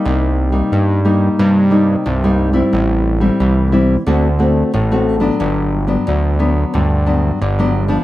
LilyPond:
<<
  \new Staff \with { instrumentName = "Nylon-string guitar" } { \time 4/4 \key g \major \tempo 4 = 90 << { <g bes ees'>8. <g bes ees'>8. <g bes ees'>4 <g bes ees'>8 r16 <g bes ees'>8 <g c' e'>16~ | <g c' e'>8. <g c' e'>8. <g c' e'>16 r16 <a c' fis'>16 r16 <a c' fis'>8 r16 <a c' fis'>8 <fis b d'>16~ | <fis b d'>8. <fis b d'>8. <fis b d'>8. r16 <fis b d'>8 r16 <fis b d'>8 <f b d'>16 | } \\ { c4 g,4 c4 g,4 | a,4 e4 d4 a,4 | g,4 d4 g,4 d4 | } >> }
  \new Staff \with { instrumentName = "Analog synth bass" } { \clef bass \time 4/4 \key g \major c,4 g,4 g,4 c,4 | a,,4 c,4 d,4 a,,4 | g,,4 d,4 d,4 g,,4 | }
>>